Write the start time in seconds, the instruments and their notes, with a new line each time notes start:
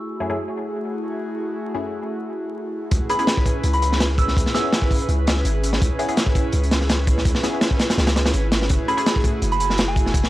Already playing: synth stab F#2 A3 C#4 E4 G#4
0.03 analog synth pad A3 E4 F#4 G#4
0.20 synth stab F#2 A3 C#4 E4 G#4
0.30 synth stab F#2 A3 C#4 E4 G#4
1.74 synth stab F#2 A3 C#4 E4 G#4
2.91 808-style bass C#2, analog synth pad C#4 E4 G#4 B4, kick, closed hi-hat
3.09 synth stab B3 C#4 E4 G#4, synth bell B5, closed hi-hat
3.19 synth stab B3 C#4 E4 G#4, synth bell B5, closed hi-hat
3.27 snare, closed hi-hat
3.37 kick
3.46 kick, closed hi-hat
3.63 808-style bass C#2, closed hi-hat
3.73 synth bell B5, closed hi-hat
3.82 synth bell B5, closed hi-hat
3.92 snare
4.00 snare, closed hi-hat
4.18 synth bell E6, kick, closed hi-hat
4.28 snare
4.36 808-style bass C#2, analog synth pad C#4 E4 G#4 B4, kick, closed hi-hat
4.46 snare
4.54 synth stab B3 C#4 E4 G#4, synth bell E6, snare, closed hi-hat
4.64 synth stab B3 C#4 E4 G#4
4.72 snare, closed hi-hat
4.82 kick
4.91 kick, open hi-hat
5.00 closed hi-hat
5.09 808-style bass C#2, closed hi-hat
5.27 snare, closed hi-hat
5.36 snare
5.45 808-style bass G#1, closed hi-hat
5.63 closed hi-hat
5.73 snare
5.80 808-style bass C#2, analog synth pad C#4 E4 G#4 B4, kick, closed hi-hat
5.99 synth stab B3 C#4 E4 G#4, closed hi-hat
6.08 synth stab B3 C#4 E4 G#4, closed hi-hat
6.17 snare, closed hi-hat
6.26 kick
6.35 kick, closed hi-hat
6.52 808-style bass C#2, closed hi-hat
6.63 closed hi-hat
6.71 snare, closed hi-hat
6.81 snare
6.89 snare, closed hi-hat
7.07 kick, closed hi-hat
7.18 snare
7.25 808-style bass C#2, analog synth pad C#4 E4 G#4 B4, kick, closed hi-hat
7.35 snare
7.43 synth stab B3 C#4 E4 G#4, snare, closed hi-hat
7.53 synth stab B3 C#4 E4 G#4
7.61 snare, closed hi-hat
7.71 kick
7.79 snare, closed hi-hat
7.90 snare, closed hi-hat
7.98 808-style bass C#2, snare, closed hi-hat
8.07 snare, closed hi-hat
8.16 snare, closed hi-hat
8.26 snare, closed hi-hat
8.33 808-style bass G#1, closed hi-hat
8.52 snare, closed hi-hat
8.62 snare
8.69 808-style bass F#1, analog synth pad A3 E4 F#4 G#4, kick, closed hi-hat
8.88 synth stab A3 C#4 E4 G#4, synth bell B5, closed hi-hat
8.97 synth stab A3 C#4 E4 G#4, synth bell B5, closed hi-hat
9.06 snare, closed hi-hat
9.16 kick
9.24 kick, closed hi-hat
9.42 808-style bass F#1, closed hi-hat
9.52 synth bell B5, closed hi-hat
9.60 synth bell B5, closed hi-hat
9.70 snare
9.78 snare, closed hi-hat
9.88 synth bell G#5
9.96 kick, closed hi-hat
10.06 snare
10.14 808-style bass F#1, analog synth pad A3 E4 F#4 G#4, kick, closed hi-hat
10.24 snare